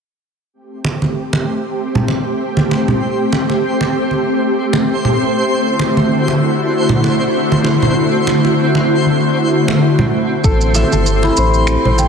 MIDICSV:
0, 0, Header, 1, 6, 480
1, 0, Start_track
1, 0, Tempo, 618557
1, 424, Time_signature, 4, 2, 24, 8
1, 9375, End_track
2, 0, Start_track
2, 0, Title_t, "Santur"
2, 0, Program_c, 0, 15
2, 8104, Note_on_c, 0, 69, 74
2, 8345, Note_on_c, 0, 76, 87
2, 8476, Note_off_c, 0, 69, 0
2, 8479, Note_on_c, 0, 69, 62
2, 8721, Note_on_c, 0, 64, 60
2, 8828, Note_on_c, 0, 72, 73
2, 9194, Note_off_c, 0, 72, 0
2, 9198, Note_on_c, 0, 72, 68
2, 9300, Note_on_c, 0, 79, 72
2, 9375, Note_off_c, 0, 64, 0
2, 9375, Note_off_c, 0, 69, 0
2, 9375, Note_off_c, 0, 72, 0
2, 9375, Note_off_c, 0, 76, 0
2, 9375, Note_off_c, 0, 79, 0
2, 9375, End_track
3, 0, Start_track
3, 0, Title_t, "Synth texture"
3, 0, Program_c, 1, 99
3, 417, Note_on_c, 1, 60, 88
3, 418, Note_on_c, 1, 72, 86
3, 9375, Note_off_c, 1, 60, 0
3, 9375, Note_off_c, 1, 72, 0
3, 9375, End_track
4, 0, Start_track
4, 0, Title_t, "Ambient pad"
4, 0, Program_c, 2, 92
4, 415, Note_on_c, 2, 67, 83
4, 416, Note_on_c, 2, 60, 65
4, 421, Note_on_c, 2, 57, 73
4, 4229, Note_off_c, 2, 60, 0
4, 4229, Note_off_c, 2, 67, 0
4, 4259, Note_on_c, 2, 50, 76
4, 4260, Note_on_c, 2, 64, 70
4, 4260, Note_on_c, 2, 66, 85
4, 8071, Note_off_c, 2, 50, 0
4, 8071, Note_off_c, 2, 64, 0
4, 8071, Note_off_c, 2, 66, 0
4, 8072, Note_off_c, 2, 57, 0
4, 8102, Note_on_c, 2, 67, 90
4, 8106, Note_on_c, 2, 57, 75
4, 8107, Note_on_c, 2, 60, 70
4, 9375, Note_off_c, 2, 57, 0
4, 9375, Note_off_c, 2, 60, 0
4, 9375, Note_off_c, 2, 67, 0
4, 9375, End_track
5, 0, Start_track
5, 0, Title_t, "Sub bass"
5, 0, Program_c, 3, 38
5, 8102, Note_on_c, 3, 33, 96
5, 8409, Note_off_c, 3, 33, 0
5, 8480, Note_on_c, 3, 31, 89
5, 8772, Note_off_c, 3, 31, 0
5, 8825, Note_on_c, 3, 33, 90
5, 9131, Note_off_c, 3, 33, 0
5, 9197, Note_on_c, 3, 33, 94
5, 9375, Note_off_c, 3, 33, 0
5, 9375, End_track
6, 0, Start_track
6, 0, Title_t, "Drums"
6, 656, Note_on_c, 9, 62, 52
6, 733, Note_off_c, 9, 62, 0
6, 791, Note_on_c, 9, 63, 54
6, 868, Note_off_c, 9, 63, 0
6, 1032, Note_on_c, 9, 62, 50
6, 1110, Note_off_c, 9, 62, 0
6, 1515, Note_on_c, 9, 64, 77
6, 1593, Note_off_c, 9, 64, 0
6, 1617, Note_on_c, 9, 62, 56
6, 1695, Note_off_c, 9, 62, 0
6, 1993, Note_on_c, 9, 63, 74
6, 2070, Note_off_c, 9, 63, 0
6, 2106, Note_on_c, 9, 62, 49
6, 2184, Note_off_c, 9, 62, 0
6, 2236, Note_on_c, 9, 64, 79
6, 2314, Note_off_c, 9, 64, 0
6, 2581, Note_on_c, 9, 62, 54
6, 2658, Note_off_c, 9, 62, 0
6, 2713, Note_on_c, 9, 62, 33
6, 2790, Note_off_c, 9, 62, 0
6, 2955, Note_on_c, 9, 62, 46
6, 3032, Note_off_c, 9, 62, 0
6, 3189, Note_on_c, 9, 63, 31
6, 3267, Note_off_c, 9, 63, 0
6, 3672, Note_on_c, 9, 62, 59
6, 3750, Note_off_c, 9, 62, 0
6, 3917, Note_on_c, 9, 64, 66
6, 3995, Note_off_c, 9, 64, 0
6, 4496, Note_on_c, 9, 62, 53
6, 4574, Note_off_c, 9, 62, 0
6, 4632, Note_on_c, 9, 63, 57
6, 4710, Note_off_c, 9, 63, 0
6, 4874, Note_on_c, 9, 62, 45
6, 4952, Note_off_c, 9, 62, 0
6, 5349, Note_on_c, 9, 64, 92
6, 5427, Note_off_c, 9, 64, 0
6, 5463, Note_on_c, 9, 62, 53
6, 5541, Note_off_c, 9, 62, 0
6, 5834, Note_on_c, 9, 63, 78
6, 5912, Note_off_c, 9, 63, 0
6, 5932, Note_on_c, 9, 62, 55
6, 6010, Note_off_c, 9, 62, 0
6, 6071, Note_on_c, 9, 64, 83
6, 6149, Note_off_c, 9, 64, 0
6, 6419, Note_on_c, 9, 62, 52
6, 6497, Note_off_c, 9, 62, 0
6, 6554, Note_on_c, 9, 62, 34
6, 6632, Note_off_c, 9, 62, 0
6, 6790, Note_on_c, 9, 62, 50
6, 6867, Note_off_c, 9, 62, 0
6, 7032, Note_on_c, 9, 63, 29
6, 7109, Note_off_c, 9, 63, 0
6, 7513, Note_on_c, 9, 62, 60
6, 7591, Note_off_c, 9, 62, 0
6, 7751, Note_on_c, 9, 64, 78
6, 7828, Note_off_c, 9, 64, 0
6, 8102, Note_on_c, 9, 82, 41
6, 8103, Note_on_c, 9, 36, 100
6, 8180, Note_off_c, 9, 82, 0
6, 8181, Note_off_c, 9, 36, 0
6, 8234, Note_on_c, 9, 82, 28
6, 8312, Note_off_c, 9, 82, 0
6, 8339, Note_on_c, 9, 62, 49
6, 8339, Note_on_c, 9, 82, 71
6, 8416, Note_off_c, 9, 82, 0
6, 8417, Note_off_c, 9, 62, 0
6, 8476, Note_on_c, 9, 82, 29
6, 8478, Note_on_c, 9, 63, 52
6, 8554, Note_off_c, 9, 82, 0
6, 8555, Note_off_c, 9, 63, 0
6, 8585, Note_on_c, 9, 82, 44
6, 8662, Note_off_c, 9, 82, 0
6, 8714, Note_on_c, 9, 62, 49
6, 8792, Note_off_c, 9, 62, 0
6, 8821, Note_on_c, 9, 82, 68
6, 8898, Note_off_c, 9, 82, 0
6, 8952, Note_on_c, 9, 82, 29
6, 9029, Note_off_c, 9, 82, 0
6, 9056, Note_on_c, 9, 26, 66
6, 9057, Note_on_c, 9, 82, 39
6, 9134, Note_off_c, 9, 26, 0
6, 9135, Note_off_c, 9, 82, 0
6, 9198, Note_on_c, 9, 64, 82
6, 9275, Note_off_c, 9, 64, 0
6, 9299, Note_on_c, 9, 62, 47
6, 9299, Note_on_c, 9, 82, 68
6, 9375, Note_off_c, 9, 62, 0
6, 9375, Note_off_c, 9, 82, 0
6, 9375, End_track
0, 0, End_of_file